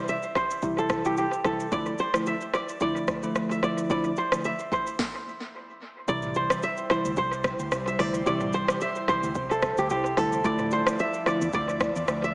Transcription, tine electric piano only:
0.00 0.15 C3 medium
0.00 0.15 E3 medium
0.00 0.15 G3 medium
0.00 0.15 E4 medium
0.63 1.01 C3 medium
0.63 1.01 E3 medium
0.63 1.01 G3 medium
0.63 1.02 E4 loud
1.05 1.24 C3 medium
1.05 1.24 E3 medium
1.05 1.24 G3 medium
1.05 1.25 E4 medium
1.44 1.65 C3 medium
1.44 1.65 E3 medium
1.44 1.65 G3 medium
1.44 1.66 E4 medium
1.72 1.92 D3 loud
1.72 1.93 F3 medium
1.72 1.93 A3 medium
1.72 1.93 E4 loud
2.14 2.33 D3 medium
2.14 2.33 F3 medium
2.14 2.34 A3 medium
2.14 2.34 E4 medium
2.81 3.19 D3 medium
2.81 3.20 F3 medium
2.81 3.20 A3 medium
2.81 3.20 E4 loud
3.23 3.60 D3 medium
3.23 3.60 F3 medium
3.23 3.60 A3 medium
3.23 3.60 E4 medium
3.62 3.88 D3 medium
3.62 3.88 F3 medium
3.62 3.88 A3 medium
3.62 3.88 E4 medium
3.90 4.11 D3 medium
3.90 4.11 F3 medium
3.90 4.11 A3 medium
3.90 4.11 E4 loud
4.32 4.51 D3 medium
4.32 4.52 F3 medium
4.32 4.52 A3 medium
4.32 4.52 E4 medium
6.08 6.59 C3 loud
6.08 6.59 E3 medium
6.08 6.59 G3 medium
6.08 6.59 E4 loud
6.90 7.11 C3 medium
6.90 7.11 E3 medium
6.90 7.11 G3 medium
6.90 7.11 E4 medium
7.99 8.20 C3 medium
7.99 8.20 E3 medium
7.99 8.20 G3 medium
7.99 8.20 E4 medium
8.26 8.77 C3 loud
8.26 8.77 E3 medium
8.26 8.77 G3 medium
8.26 8.77 E4 loud
9.08 9.29 C3 medium
9.08 9.29 E3 medium
9.08 9.29 G3 medium
9.08 9.29 E4 medium
10.17 10.38 C3 medium
10.17 10.38 E3 medium
10.17 10.38 G3 medium
10.17 10.38 E4 medium
10.44 10.95 D3 loud
10.44 10.95 F3 medium
10.44 10.95 A3 medium
10.44 10.95 E4 loud
11.26 11.47 D3 medium
11.26 11.47 F3 medium
11.26 11.47 A3 medium
11.26 11.47 E4 medium

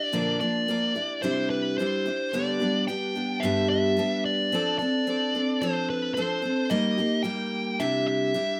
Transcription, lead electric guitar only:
0.00 0.39 D5 medium
0.41 1.25 D5 medium
1.22 1.50 C5 medium
1.50 1.77 B4 medium
1.78 2.34 C5 medium
2.32 2.83 D5 medium
2.88 3.44 G5 loud
3.40 3.68 E5 medium
3.70 4.25 E5 medium
4.25 4.77 D5 medium
4.78 5.63 D5 medium
5.62 5.89 C5 medium
5.90 6.14 B4 medium
6.14 6.72 C5 medium
6.70 7.21 D#5 medium
7.23 7.80 G5 medium
7.80 8.05 E5 medium
8.07 8.60 E5 medium

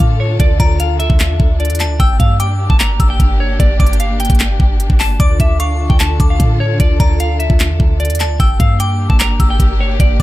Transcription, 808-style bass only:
0.00 0.38 A2 loud
0.40 0.59 D2 loud
0.60 1.08 D2 loud
1.10 1.31 D2 loud
1.30 1.39 E2 loud
1.40 1.71 D2 loud
1.70 1.86 E2 loud
1.85 1.99 D2 loud
2.00 2.19 G1 loud
2.20 2.68 G2 loud
2.70 2.99 G1 loud
3.00 3.19 G1 loud
3.20 3.58 G1 loud
3.60 3.79 G1 loud
3.80 4.28 G1 loud
4.30 4.59 G1 loud
4.60 4.89 G1 loud
4.90 5.19 G1 loud
5.20 5.39 D2 loud
5.40 5.88 D2 loud
5.90 6.19 D2 loud
6.20 6.39 D2 loud
6.40 6.78 A2 loud
6.80 6.99 D2 loud
7.00 7.48 D2 loud
7.50 7.71 D2 loud
7.70 7.79 E2 loud
7.80 8.11 D2 loud
8.10 8.26 E2 loud
8.25 8.39 D2 loud
8.40 8.59 G1 loud
8.60 9.08 G2 loud
9.10 9.39 G1 loud
9.40 9.59 G1 loud
9.60 9.98 G1 loud
10.00 10.19 G1 loud

